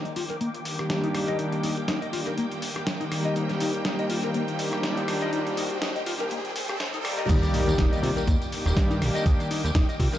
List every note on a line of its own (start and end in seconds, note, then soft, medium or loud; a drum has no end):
0.00 7.25 D#3 medium
0.00 7.26 A#3 medium
0.00 7.26 G5 medium
0.00 3.32 D6 medium
0.00 riser medium
0.05 0.11 D#5 medium
0.05 closed hi-hat soft
0.16 0.23 F4 medium
0.16 open hi-hat loud
0.30 0.35 A#4 medium
0.30 closed hi-hat soft
0.41 0.48 A#3 medium
0.41 closed hi-hat medium
0.55 closed hi-hat soft
0.64 0.75 D#3 medium
0.64 0.75 G3 medium
0.64 0.76 A#3 medium
0.64 0.76 D4 medium
0.64 0.76 G4 medium
0.64 open hi-hat loud
0.78 1.12 D#3 medium
0.78 1.12 G3 medium
0.78 1.12 A#3 medium
0.78 1.12 D4 medium
0.78 0.85 G4 medium
0.78 1.12 G4 medium
0.78 cross-stick medium
0.78 closed hi-hat soft
0.90 snare loud
0.90 closed hi-hat medium
1.04 1.07 D#4 loud
1.04 closed hi-hat soft
1.14 1.25 D#3 medium
1.14 1.25 G3 medium
1.14 1.25 A#3 medium
1.14 1.25 D4 medium
1.14 1.25 G4 loud
1.14 cross-stick medium
1.14 open hi-hat loud
1.28 1.36 D#3 medium
1.28 1.36 G3 medium
1.28 1.36 A#3 medium
1.28 1.37 D4 medium
1.28 1.37 G4 loud
1.28 1.36 D#5 loud
1.28 closed hi-hat soft
1.38 1.53 D#3 medium
1.38 1.53 G3 medium
1.38 1.53 A#3 medium
1.38 1.54 D4 medium
1.38 1.46 D#4 medium
1.38 1.54 G4 medium
1.38 closed hi-hat medium
1.52 closed hi-hat soft
1.64 1.74 D#4 medium
1.64 open hi-hat loud
1.77 1.83 G4 medium
1.77 closed hi-hat soft
1.88 1.99 D#4 medium
1.88 snare loud
1.88 closed hi-hat medium
2.02 2.07 D#5 medium
2.02 closed hi-hat soft
2.12 2.27 D#3 medium
2.12 2.27 G3 medium
2.12 2.28 A#3 medium
2.12 2.28 D4 medium
2.12 2.20 F4 medium
2.12 2.28 G4 medium
2.12 open hi-hat loud
2.27 2.32 A#4 medium
2.27 closed hi-hat soft
2.38 2.45 A#3 medium
2.38 closed hi-hat medium
2.52 closed hi-hat soft
2.62 open hi-hat loud
2.76 2.81 G4 medium
2.76 cross-stick medium
2.76 closed hi-hat soft
2.87 snare loud
2.87 closed hi-hat medium
3.00 4.56 D#3 medium
3.00 4.56 G3 medium
3.00 4.56 A#3 medium
3.00 3.04 D#4 medium
3.00 4.57 G4 medium
3.00 closed hi-hat soft
3.12 cross-stick medium
3.12 open hi-hat loud
3.25 3.33 D#5 medium
3.25 closed hi-hat soft
3.36 3.43 D#4 medium
3.36 7.26 C5 medium
3.36 closed hi-hat medium
3.49 snare soft
3.49 closed hi-hat soft
3.60 3.71 D#4 medium
3.60 open hi-hat loud
3.74 3.80 G4 medium
3.74 closed hi-hat soft
3.85 3.96 D#4 medium
3.85 snare loud
3.85 closed hi-hat medium
3.99 4.05 D#5 medium
3.99 closed hi-hat soft
4.10 4.17 F4 medium
4.10 open hi-hat loud
4.24 4.29 A#4 medium
4.34 4.41 A#3 medium
4.34 closed hi-hat medium
4.48 closed hi-hat soft
4.58 4.69 D#3 medium
4.58 4.69 G3 medium
4.58 4.69 A#3 medium
4.58 4.69 D4 medium
4.58 4.70 G4 medium
4.58 open hi-hat loud
4.72 5.05 D#3 medium
4.72 5.05 G3 medium
4.72 5.05 A#3 medium
4.72 5.06 D4 medium
4.72 5.06 G4 medium
4.72 4.78 G4 medium
4.72 cross-stick medium
4.72 closed hi-hat soft
4.83 snare loud
4.83 closed hi-hat medium
4.97 5.01 D#4 loud
4.97 closed hi-hat soft
5.07 5.18 D#3 loud
5.07 5.18 G3 medium
5.07 5.18 A#3 medium
5.07 5.19 D4 medium
5.07 5.19 G4 loud
5.07 cross-stick medium
5.07 open hi-hat loud
5.21 5.30 D#3 loud
5.21 5.30 G3 medium
5.21 5.30 A#3 medium
5.21 5.30 D4 medium
5.21 5.30 G4 loud
5.21 5.30 D#5 loud
5.21 closed hi-hat soft
5.32 5.47 D#3 medium
5.32 5.47 G3 medium
5.32 5.47 A#3 medium
5.32 5.47 D4 medium
5.32 5.40 D#4 medium
5.32 5.47 G4 medium
5.32 closed hi-hat medium
5.47 closed hi-hat soft
5.57 5.68 D#4 medium
5.57 open hi-hat loud
5.71 5.77 G4 medium
5.71 closed hi-hat soft
5.82 5.92 D#4 medium
5.82 snare loud
5.82 closed hi-hat medium
5.96 6.01 D#5 medium
5.96 closed hi-hat soft
6.05 6.20 D#3 medium
6.05 6.21 G3 medium
6.05 6.21 A#3 medium
6.05 6.21 D4 medium
6.05 6.13 F4 medium
6.05 6.21 G4 medium
6.05 open hi-hat loud
6.20 6.26 A#4 medium
6.20 closed hi-hat soft
6.31 6.38 A#3 medium
6.31 closed hi-hat medium
6.45 closed hi-hat soft
6.56 open hi-hat loud
6.69 6.75 G4 medium
6.69 cross-stick medium
6.69 closed hi-hat soft
6.80 snare loud
6.80 closed hi-hat medium
6.93 7.27 D#3 medium
6.93 7.27 G3 medium
6.93 7.28 A#3 medium
6.93 6.97 D#4 loud
6.93 7.28 G4 medium
6.93 7.28 D5 medium
6.93 closed hi-hat soft
7.05 cross-stick medium
7.05 open hi-hat loud
7.18 7.27 D#5 loud
7.18 closed hi-hat soft
7.28 7.38 D#2 loud
7.28 8.03 D#3 loud
7.28 10.18 D#3 medium
7.28 8.03 G3 medium
7.28 8.03 A#3 loud
7.28 10.18 A#3 medium
7.28 7.36 D#4 medium
7.28 8.03 G4 loud
7.28 8.03 D5 medium
7.28 10.18 G5 medium
7.28 10.18 D6 medium
7.28 kick loud
7.28 closed hi-hat medium
7.28 crash loud
7.28 tambourine medium
7.28 impact medium
7.43 closed hi-hat soft
7.43 tambourine soft
7.54 7.64 D#4 medium
7.54 open hi-hat loud
7.67 7.74 D#2 medium
7.67 7.73 G4 medium
7.67 closed hi-hat soft
7.67 tambourine medium
7.78 7.87 D#1 loud
7.78 7.89 D#4 medium
7.78 kick loud
7.78 snare loud
7.78 closed hi-hat medium
7.78 tambourine medium
7.92 7.98 D#5 medium
7.92 closed hi-hat soft
7.92 tambourine soft
8.03 8.12 C3 medium
8.03 8.10 F4 medium
8.03 open hi-hat loud
8.17 8.22 A#4 medium
8.17 closed hi-hat soft
8.17 tambourine medium
8.27 8.36 D#2 loud
8.27 8.34 A#3 medium
8.27 kick loud
8.27 closed hi-hat medium
8.27 tambourine medium
8.42 closed hi-hat soft
8.42 tambourine soft
8.52 8.62 D#3 medium
8.52 8.63 G3 medium
8.52 8.63 A#3 medium
8.52 8.63 D4 medium
8.52 8.63 G4 medium
8.52 open hi-hat loud
8.66 8.73 D#1 loud
8.66 8.99 D#3 medium
8.66 8.99 G3 medium
8.66 8.99 A#3 medium
8.66 8.99 D4 medium
8.66 8.71 G4 medium
8.66 8.99 G4 medium
8.66 cross-stick medium
8.66 closed hi-hat soft
8.66 tambourine medium
8.76 9.03 G2 loud
8.76 kick loud
8.76 snare loud
8.76 closed hi-hat medium
8.90 8.94 D#4 loud
8.90 closed hi-hat soft
8.90 tambourine soft
9.01 9.10 A#1 loud
9.01 9.12 D#3 loud
9.01 9.12 G3 medium
9.01 9.12 A#3 medium
9.01 9.12 D4 medium
9.01 9.12 G4 loud
9.01 cross-stick medium
9.01 open hi-hat loud
9.15 9.23 D#3 loud
9.15 9.23 G3 medium
9.15 9.23 A#3 medium
9.15 9.24 D4 medium
9.15 9.24 G4 loud
9.15 9.23 D#5 loud
9.15 closed hi-hat soft
9.15 tambourine medium
9.26 9.35 D#2 loud
9.26 9.41 D#3 medium
9.26 9.41 G3 medium
9.26 9.41 A#3 medium
9.26 9.41 D4 medium
9.26 9.33 D#4 medium
9.26 9.41 G4 loud
9.26 kick loud
9.26 closed hi-hat medium
9.26 tambourine medium
9.40 closed hi-hat soft
9.40 tambourine soft
9.51 9.61 D#4 medium
9.51 open hi-hat loud
9.64 9.71 D#2 medium
9.64 9.70 G4 medium
9.64 closed hi-hat soft
9.64 tambourine medium
9.75 9.84 D#1 loud
9.75 9.85 D#4 medium
9.75 kick loud
9.75 snare loud
9.75 closed hi-hat medium
9.75 tambourine medium
9.89 9.94 D#5 medium
9.89 closed hi-hat soft
9.89 tambourine soft
10.00 10.08 C3 medium
10.00 10.14 D#3 medium
10.00 10.14 G3 medium
10.00 10.15 A#3 medium
10.00 10.15 D4 medium
10.00 10.07 F4 medium
10.00 10.15 G4 medium
10.00 kick medium
10.00 open hi-hat loud
10.13 10.18 A#4 medium
10.13 closed hi-hat soft
10.13 tambourine medium